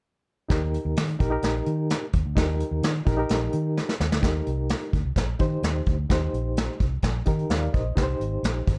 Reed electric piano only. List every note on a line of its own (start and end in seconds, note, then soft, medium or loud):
0.49 1.04 D#4 medium
0.49 1.05 G4 medium
0.49 1.05 A#4 medium
1.19 1.29 D#4 medium
1.19 1.29 G4 medium
1.19 1.30 A#4 medium
1.30 2.04 D#4 medium
1.30 2.05 G4 medium
1.30 2.05 A#4 medium
2.36 2.91 D#4 medium
2.36 2.92 G4 medium
2.36 2.92 A#4 medium
3.05 3.15 D#4 medium
3.05 3.16 G4 medium
3.05 3.16 A#4 medium
3.17 3.91 D#4 medium
3.17 3.92 G4 medium
3.17 3.92 A#4 medium
4.22 4.96 D#4 medium
4.22 4.96 G4 medium
4.22 4.97 A#4 medium
5.39 5.95 D#4 medium
5.39 5.95 G4 medium
5.39 5.96 C5 medium
6.09 6.83 D#4 medium
6.09 6.84 G4 medium
6.09 6.85 C5 medium
7.26 7.82 D#4 medium
7.26 7.82 G4 medium
7.26 7.83 A#4 medium
7.50 7.73 D5 medium
7.50 7.73 F5 medium
7.73 8.02 C5 medium
7.73 8.18 D#5 medium
7.96 8.70 D#4 medium
7.96 8.71 G4 medium
7.96 8.03 B4 medium
8.03 8.74 C5 medium